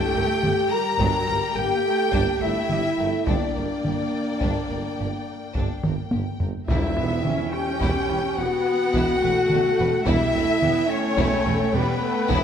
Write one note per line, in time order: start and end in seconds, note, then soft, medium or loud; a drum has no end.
0.00 0.72 A3 loud
0.00 0.14 D4 loud
0.00 0.70 G4 loud
0.00 0.70 G5 loud
0.00 0.72 G5 loud
0.00 3.24 G5 loud
0.16 0.27 G1 medium
0.16 0.24 G1 medium
0.16 0.24 G2 medium
0.16 0.24 A#4 medium
0.43 0.55 G1 medium
0.43 0.52 G1 medium
0.43 0.52 G2 medium
0.43 0.53 G4 medium
0.43 taiko mid medium
0.71 1.01 G3 medium
0.71 1.57 A#4 loud
0.71 1.56 A#5 loud
0.71 1.57 A#5 loud
0.99 1.11 G1 loud
0.99 1.08 G1 loud
0.99 1.08 G2 loud
0.99 1.28 F#3 medium
0.99 1.27 D4 loud
0.99 taiko medium
1.28 1.40 G1 medium
1.28 1.37 G1 medium
1.28 1.37 G2 medium
1.28 1.57 G3 medium
1.28 1.36 A#4 medium
1.55 1.65 G1 medium
1.55 1.69 G1 medium
1.55 1.66 G2 medium
1.55 1.85 A#3 loud
1.55 1.63 G4 medium
1.55 2.42 G4 loud
1.55 2.42 G5 loud
1.85 2.13 A3 medium
2.12 2.21 G1 medium
2.12 2.26 G1 loud
2.12 2.22 G2 loud
2.12 2.41 A#3 medium
2.12 2.40 D4 loud
2.12 taiko medium
2.41 2.49 G1 medium
2.41 2.54 G1 medium
2.41 2.51 G2 medium
2.41 2.69 A3 medium
2.41 3.27 E4 loud
2.41 2.49 A#4 medium
2.41 3.28 E5 loud
2.41 3.25 E5 loud
2.69 2.78 G1 medium
2.69 2.83 G1 medium
2.69 2.79 G2 medium
2.69 2.99 G3 medium
2.69 2.78 G4 medium
2.69 taiko mid medium
2.97 3.07 G1 medium
2.97 3.12 G1 medium
2.97 3.07 G2 medium
2.97 3.26 A3 medium
2.97 3.06 A#4 medium
3.26 3.36 G1 medium
3.26 3.39 G1 medium
3.26 3.36 G2 loud
3.26 6.22 A#3 medium
3.26 5.83 D4 medium
3.26 3.54 D4 medium
3.26 5.83 D5 medium
3.26 5.84 D5 medium
3.26 6.45 G5 medium
3.26 taiko loud
3.56 3.65 G1 medium
3.56 3.69 G1 medium
3.56 3.64 G2 medium
3.56 3.64 A#4 medium
3.84 3.93 G1 medium
3.84 3.97 G1 medium
3.84 3.93 G2 medium
3.84 3.92 G4 medium
3.84 taiko mid medium
4.41 4.51 G1 medium
4.41 4.54 G1 medium
4.41 4.49 G2 medium
4.41 4.68 D4 medium
4.41 taiko medium
4.70 4.79 G1 medium
4.70 4.83 G1 medium
4.70 4.78 G2 medium
4.70 4.79 A#4 medium
4.99 5.08 G1 medium
4.99 5.12 G1 medium
4.99 5.08 G2 medium
4.99 5.07 G4 medium
5.55 5.64 G1 medium
5.55 5.68 G1 medium
5.55 5.64 G2 medium
5.55 5.82 D4 medium
5.55 taiko medium
5.84 5.92 G1 medium
5.84 5.96 G1 medium
5.84 5.93 G2 medium
5.84 5.93 A#4 medium
5.84 taiko mid loud
6.11 6.21 G1 medium
6.11 6.24 G1 medium
6.11 6.21 G2 medium
6.11 6.21 G4 medium
6.11 taiko high medium
6.40 6.49 G1 medium
6.40 6.53 G1 medium
6.40 6.49 G2 medium
6.40 6.49 A#4 medium
6.40 taiko low medium
6.67 6.77 E1 medium
6.67 6.81 E1 medium
6.67 6.78 E2 medium
6.67 7.51 E2 loud
6.67 6.96 G3 medium
6.67 7.50 E4 loud
6.67 6.96 E4 medium
6.67 7.49 E5 loud
6.67 7.50 E5 medium
6.67 10.03 G5 medium
6.67 taiko loud
6.97 7.06 E1 medium
6.97 7.09 E1 medium
6.97 7.06 E2 medium
6.97 7.25 B3 medium
6.97 7.06 B4 medium
6.97 taiko rim soft
7.25 7.34 E1 medium
7.25 7.38 E1 medium
7.25 7.34 E2 medium
7.25 8.36 C#4 medium
7.25 7.33 G4 medium
7.25 taiko mid medium
7.52 8.38 G4 loud
7.52 8.40 G5 loud
7.52 8.39 G5 loud
7.52 taiko rim soft
7.81 7.90 E1 medium
7.81 7.94 E1 medium
7.81 7.90 E2 loud
7.81 8.08 E4 medium
7.81 taiko medium
8.09 8.19 E1 medium
8.09 8.22 E1 medium
8.09 8.17 E2 medium
8.09 8.20 B4 medium
8.09 taiko rim soft
8.37 8.46 E1 medium
8.37 8.50 E1 medium
8.37 8.46 E2 medium
8.37 9.23 B3 loud
8.37 10.06 F#4 loud
8.37 8.46 G4 medium
8.37 10.07 F#5 loud
8.66 taiko rim soft
8.94 9.06 E1 loud
8.94 9.03 E1 medium
8.94 9.02 E2 loud
8.94 9.21 E4 loud
8.94 taiko medium
9.21 9.31 E1 medium
9.21 9.34 E1 medium
9.21 9.31 E2 medium
9.21 10.05 A3 loud
9.21 9.31 B4 medium
9.21 taiko rim soft
9.50 9.62 E1 medium
9.50 9.59 E1 medium
9.50 9.59 E2 medium
9.50 9.60 G4 medium
9.50 taiko mid medium
9.79 9.88 E1 medium
9.79 9.91 E1 medium
9.79 9.87 E2 medium
9.79 9.88 B4 loud
10.04 10.18 E1 loud
10.04 10.15 E1 loud
10.04 10.13 E2 loud
10.04 10.34 G3 loud
10.04 10.87 E4 loud
10.04 10.88 E5 loud
10.04 taiko loud
10.08 10.33 E4 loud
10.08 10.91 E5 loud
10.08 12.44 G5 loud
10.34 10.46 E1 medium
10.34 10.43 E1 medium
10.34 10.43 E2 medium
10.34 10.62 A3 loud
10.34 10.44 B4 medium
10.61 10.74 E1 medium
10.61 10.71 E1 medium
10.61 10.70 E2 medium
10.61 10.89 B3 loud
10.61 10.71 G4 medium
10.61 taiko mid medium
10.88 11.72 A3 loud
10.88 11.73 C#4 loud
10.88 11.74 C#5 loud
10.88 11.76 C#5 loud
11.17 11.26 E1 loud
11.17 11.29 E1 loud
11.17 11.25 E2 loud
11.17 11.44 E4 loud
11.17 taiko loud
11.46 11.57 E1 medium
11.46 11.54 E1 medium
11.46 11.54 E2 medium
11.46 11.54 B4 loud
11.73 11.85 E1 medium
11.73 11.82 E1 medium
11.73 11.82 E2 medium
11.73 12.02 G3 loud
11.73 12.44 B3 loud
11.73 11.81 G4 medium
11.73 12.44 B4 loud
12.02 12.30 A3 loud
12.30 12.39 E1 loud
12.30 12.42 E1 loud
12.30 12.38 E2 loud
12.30 12.44 B3 loud
12.30 12.44 E4 loud
12.30 taiko medium